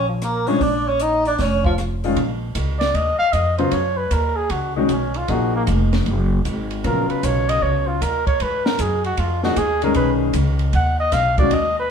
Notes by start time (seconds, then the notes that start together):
Already playing: A#1
0.09 F3 F4
0.22 A#3 A#4, cross-stick, closed hi-hat
0.47 F3 G#3 C#4 D4 C#5, open hi-hat
0.61 A#1 D4 D5, kick, open hi-hat
0.86 C#4 C#5
1.00 D#4 D#5, closed hi-hat
1.25 D4 D5, open hi-hat
1.39 F1 C#4 C#5, kick, snare, open hi-hat
1.64 F3 F4, kick
1.78 cross-stick, closed hi-hat
2.04 D#3 G#3 C#4 F4, open hi-hat
2.16 A#1, kick, ride
2.55 C#2, kick, hi-hat pedal, ride
2.79 D5, snare, ride
2.94 D#2 D#5, kick, ride
3.18 F5, muted upright bass stroke
3.33 F2 D#5, kick, hi-hat pedal, ride
3.58 C#3 F#3 B3 F4 C5, ride
3.71 F#2 C#5, kick, ride
3.97 B4
4.11 D#2 A#4, kick, hi-hat pedal, ride
4.36 G#4
4.50 C#2 F#4, kick, ride
4.76 D#3 G#3 A#3 C#4 F#4
4.89 B1 C#4, kick, hi-hat pedal, ride
5.14 F4, ride
5.28 A#1 F3 A#3 D#4 F#4 G#4, kick, ride
5.56 A#3
5.67 F1, kick, hi-hat pedal, ride
5.93 snare, ride
6.06 F#1, kick, ride
6.45 G#1, kick, hi-hat pedal, ride
6.71 ride
6.84 A#1 C#3 F#3 B3 F4 A#4, kick, ride
7.10 B4, muted upright bass stroke, ride
7.23 B1 C#5, kick, hi-hat pedal, ride
7.49 D#5, ride
7.62 C#2 C#5, kick
7.88 F4
8.01 D#2 A#4, kick, hi-hat pedal, ride
8.27 C#5, kick, ride
8.40 G#2 B4, kick, ride
8.65 A#4, snare
8.79 F#2 G#4, kick, hi-hat pedal, ride
9.04 F#4, ride
9.17 F2 F4, kick, ride
9.43 F3 A#3 D#4 F#4 G#4, snare
9.56 D#2 G#4, kick, hi-hat pedal, ride
9.82 D#3 G#3 C#4 G#4 A#4, ride
9.94 B1 B4, kick, ride
10.33 C#2, kick, hi-hat pedal, ride
10.59 ride
10.73 D#2 F#5, kick, ride
11.00 D#5
11.12 B1 F5, kick, snare, hi-hat pedal, ride
11.38 D#3 G#3 C#4 F#4 D5, kick, ride
11.51 D#2 D#5, kick, ride
11.79 B4